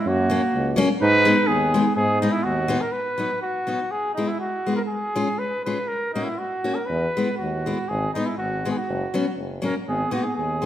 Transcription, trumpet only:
0.08 F#4
1.01 B4
1.47 G#4
1.96 G#4
2.21 D#4
2.32 E4
2.44 F#4
2.81 A#4
2.92 B4
3.42 F#4
3.91 G#4
4.14 D#4
4.28 E4
4.40 F#4
4.76 A#4
4.87 G#4
5.39 B4
5.65 B4
5.88 A#4
6.13 D#4
6.24 E4
6.39 F#4
6.75 A#4
6.86 B4
7.38 F#4
7.89 G#4
8.13 D#4
8.26 E4
8.38 F#4
8.71 G#4
8.77 F#4
9.64 A#4
9.89 G#4
10.12 F#4
10.23 G#4
10.36 G#4

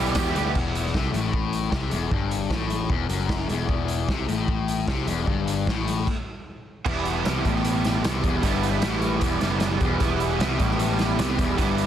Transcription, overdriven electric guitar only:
Already playing: E2 B2 E3
0.00 G3 B3 G4
0.16 E2 B2 E3 G3 B3 G4
0.36 E2 B2 E3 G3 B3 G4
6.85 E2 B2 E3 G3 B3 E4
8.43 E2 B2 E3 G3 B3 E4
10.00 E2 B2 E3 G3 B3 E4
11.57 E2 B2 E3 G3 B3 E4

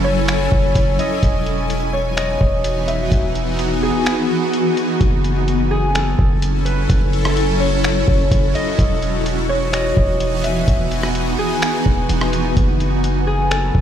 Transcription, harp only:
Already playing: A4 B4
0.04 C#5
0.99 D#5
1.93 C#5
2.17 D#5
2.88 E5
3.83 G#4
5.71 G#4
5.95 A4
6.65 B4
7.60 C#5
8.55 D#5
9.49 C#5
9.73 D#5
10.43 E5
11.39 G#4
13.27 G#4
13.51 A4

